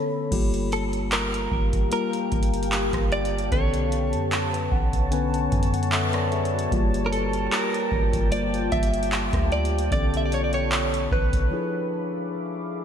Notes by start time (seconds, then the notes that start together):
Already playing: D3 B3 C#4 A4 C#5 B5
0.31 G1 G3 A#3 F4 G4 F5 G5 A5, kick, closed hi-hat, crash
0.54 closed hi-hat
0.72 A4, closed hi-hat
0.93 closed hi-hat
1.12 A#4, clap, closed hi-hat
1.34 closed hi-hat
1.52 G1, kick
1.73 kick, closed hi-hat
1.91 G3 A#3 F4 A#4, closed hi-hat
2.13 closed hi-hat
2.32 G1, kick, closed hi-hat
2.43 closed hi-hat
2.54 closed hi-hat
2.63 closed hi-hat
2.72 clap, closed hi-hat
2.93 G1, kick, cross-stick, closed hi-hat
3.12 D5, closed hi-hat
3.25 closed hi-hat
3.38 closed hi-hat
3.51 B1 C#3 B3 C#4 A4 B4 C#5 C#6, kick, closed hi-hat
3.57 D3
3.74 closed hi-hat
3.92 closed hi-hat
4.13 F#2, closed hi-hat
4.32 clap, closed hi-hat
4.54 B4, closed hi-hat
4.72 B1 F#5, kick
4.93 kick, closed hi-hat
5.11 D3 B3 C#4 B4 G#5, closed hi-hat
5.34 A5, closed hi-hat
5.52 F#2 G#5, kick, closed hi-hat
5.63 closed hi-hat
5.74 F#5, closed hi-hat
5.83 closed hi-hat
5.92 A4 E5 F#5, clap, closed hi-hat
6.13 D5, cross-stick, closed hi-hat
6.32 G#4 E5, closed hi-hat
6.45 closed hi-hat
6.54 F#4 D5
6.59 closed hi-hat
6.71 G1 G3 A#3 F4 G4 G5, kick, closed hi-hat
6.94 closed hi-hat
7.06 A#4
7.12 A4, closed hi-hat
7.33 closed hi-hat
7.52 A#4, clap, closed hi-hat
7.74 closed hi-hat
7.92 G1, kick
8.13 G1, kick, closed hi-hat
8.31 G3 A#3 F4 C5 D5, closed hi-hat
8.54 closed hi-hat
8.72 G1 E5, kick, closed hi-hat
8.83 closed hi-hat
8.94 closed hi-hat
9.03 closed hi-hat
9.12 clap, closed hi-hat
9.33 D2, kick, cross-stick, closed hi-hat
9.52 D5, closed hi-hat
9.65 closed hi-hat
9.79 closed hi-hat
9.91 B1 D3 B3 C#4 A4 C#5 D5 B5 C#6, kick, closed hi-hat
10.14 E5, closed hi-hat
10.25 D5
10.32 C#5, closed hi-hat
10.44 D5
10.53 C#5, closed hi-hat
10.72 clap, closed hi-hat
10.94 closed hi-hat
11.12 B1 B4, kick
11.33 B1, kick, closed hi-hat
11.51 F3 D4 E4 G#4 E5 F5 D6